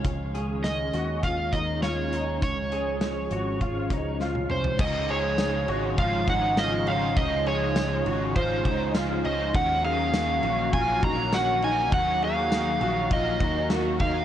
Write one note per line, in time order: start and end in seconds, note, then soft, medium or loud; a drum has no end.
0.00 4.76 G#3 medium
0.04 0.90 C#2 medium
0.04 2.40 D#3 medium
0.04 4.76 C#4 medium
0.04 kick loud
0.04 closed hi-hat medium
0.34 0.94 G#4 medium
0.34 closed hi-hat soft
0.64 1.25 D#5 medium
0.64 snare loud
0.64 closed hi-hat medium
0.93 1.50 D#2 medium
0.93 1.23 F#4 medium
0.93 closed hi-hat soft
1.23 1.53 F4 medium
1.23 1.54 F5 medium
1.23 kick medium
1.23 closed hi-hat medium
1.53 2.42 D#2 medium
1.53 1.83 D#4 medium
1.53 1.83 D#5 medium
1.53 kick medium
1.53 closed hi-hat medium
1.83 2.13 F4 medium
1.83 2.42 C#5 medium
1.83 snare loud
1.83 closed hi-hat medium
2.13 2.42 D#4 medium
2.13 closed hi-hat medium
2.42 3.27 C#2 medium
2.42 4.78 F3 medium
2.42 4.17 C#5 medium
2.42 kick loud
2.42 closed hi-hat medium
2.72 3.31 G#4 medium
2.72 closed hi-hat soft
3.01 snare loud
3.01 closed hi-hat medium
3.31 3.87 G#1 medium
3.31 3.61 F#4 medium
3.31 closed hi-hat soft
3.61 3.91 F4 medium
3.61 kick medium
3.61 closed hi-hat medium
3.90 4.47 C#2 medium
3.90 4.20 D#4 medium
3.90 kick medium
3.90 closed hi-hat medium
4.20 4.50 F4 medium
4.20 snare soft
4.35 high tom soft
4.50 4.78 C2 medium
4.50 4.80 C#4 medium
4.50 4.81 C5 medium
4.50 mid tom medium
4.64 floor tom medium
4.77 5.64 C#2 loud
4.77 5.97 C#3 medium
4.77 9.50 C#3 medium
4.77 9.50 F3 medium
4.77 9.50 G#3 medium
4.77 5.96 G#3 medium
4.77 9.50 C#4 medium
4.77 9.51 D#4 medium
4.77 5.11 D#5 medium
4.77 kick loud
4.77 crash loud
4.81 5.99 D#4 medium
4.81 6.00 F4 medium
5.09 5.68 G#4 medium
5.09 6.02 C#5 loud
5.09 ride soft
5.38 snare loud
5.38 ride soft
5.38 tambourine medium
5.68 6.25 G#1 medium
5.68 5.98 F#4 medium
5.68 ride soft
5.97 6.87 G#3 medium
5.97 6.91 D#4 medium
5.97 6.28 F4 medium
5.97 6.88 F4 medium
5.97 6.29 F5 loud
5.97 kick loud
5.97 ride medium
6.02 6.85 C5 medium
6.28 7.13 G#1 medium
6.28 6.58 D#4 medium
6.28 6.59 F#5 loud
6.28 kick medium
6.28 ride soft
6.57 6.88 F4 medium
6.57 6.89 D#5 loud
6.57 snare loud
6.57 ride medium
6.57 tambourine medium
6.86 7.17 C#4 medium
6.86 7.18 F4 soft
6.86 7.17 C5 soft
6.86 7.18 F5 loud
6.86 ride soft
6.91 7.18 D#4 soft
7.15 8.02 C#2 loud
7.15 8.35 C#3 medium
7.15 8.34 G#3 medium
7.15 7.47 D#5 medium
7.15 kick loud
7.15 ride medium
7.19 8.36 D#4 medium
7.19 8.37 F4 medium
7.47 8.06 G#4 medium
7.47 8.36 C#5 medium
7.47 ride soft
7.76 snare loud
7.76 ride soft
7.76 tambourine medium
8.06 8.62 G#1 medium
8.06 8.36 F#4 medium
8.06 ride soft
8.35 9.24 G#3 medium
8.35 9.28 D#4 medium
8.35 8.66 F4 medium
8.35 9.25 F4 medium
8.35 8.91 C5 medium
8.35 kick medium
8.35 ride medium
8.39 9.23 C5 medium
8.65 9.22 C#2 loud
8.65 8.95 D#4 medium
8.65 kick medium
8.65 ride soft
8.95 9.25 F4 medium
8.95 snare loud
8.95 ride medium
8.95 tambourine medium
9.24 9.53 C#2 loud
9.24 9.55 C#4 medium
9.24 9.55 F4 soft
9.24 9.54 C5 medium
9.24 9.56 D#5 medium
9.24 ride soft
9.28 9.56 D#4 soft
9.52 10.40 D#2 loud
9.52 10.76 D#3 medium
9.52 14.25 D#3 medium
9.52 10.70 F#3 medium
9.52 14.25 F#3 medium
9.52 14.25 A#3 medium
9.52 11.90 C#4 medium
9.52 14.25 F#4 medium
9.52 9.85 F#5 loud
9.52 kick loud
9.52 ride medium
9.56 10.72 C#4 medium
9.56 10.73 F#4 medium
9.56 10.75 A#4 loud
9.84 10.44 G#4 medium
9.84 10.73 F5 medium
9.84 ride soft
10.14 snare loud
10.14 ride medium
10.14 tambourine medium
10.43 11.00 A#1 medium
10.43 10.73 F#4 medium
10.43 ride soft
10.71 11.62 F#3 medium
10.71 11.62 C#4 medium
10.71 11.03 F4 medium
10.71 11.63 F#4 medium
10.71 11.04 G#5 loud
10.71 kick medium
10.71 ride medium
10.76 11.61 A#4 medium
11.03 11.92 A#1 medium
11.03 11.33 D#4 medium
11.03 11.34 A#5 loud
11.03 kick medium
11.03 ride soft
11.33 11.63 F#4 medium
11.33 11.64 F#5 loud
11.33 snare loud
11.33 ride medium
11.33 tambourine medium
11.62 11.93 D#4 medium
11.62 11.93 F#4 soft
11.62 11.92 A#4 medium
11.62 11.94 G#5 loud
11.62 ride soft
11.66 11.94 C#4 soft
11.91 12.77 D#2 loud
11.91 13.15 D#3 medium
11.91 13.09 F#3 medium
11.91 14.25 D#4 medium
11.91 12.24 F#5 loud
11.91 kick loud
11.91 ride medium
11.95 13.11 C#4 medium
11.95 13.12 F#4 medium
11.95 13.14 A#4 medium
12.22 12.81 G#4 medium
12.22 13.13 F5 loud
12.22 ride soft
12.52 snare loud
12.52 ride medium
12.52 tambourine medium
12.81 13.38 A#1 medium
12.81 13.11 F#4 medium
12.81 ride soft
13.10 14.00 F#3 medium
13.10 14.01 C#4 medium
13.10 13.41 F4 medium
13.10 14.01 F#4 medium
13.10 13.68 D#5 medium
13.10 kick medium
13.10 ride medium
13.15 13.98 A#4 medium
13.40 13.97 D#2 loud
13.40 13.71 D#4 medium
13.40 kick medium
13.40 ride medium
13.70 14.00 F#4 medium
13.70 snare loud
13.70 ride medium
13.70 tambourine medium
13.99 14.25 D#2 medium
13.99 14.25 D#4 medium
13.99 14.25 F#4 soft
13.99 14.25 A#4 medium
13.99 14.25 F5 loud
13.99 kick medium
13.99 ride soft
14.04 14.25 C#4 soft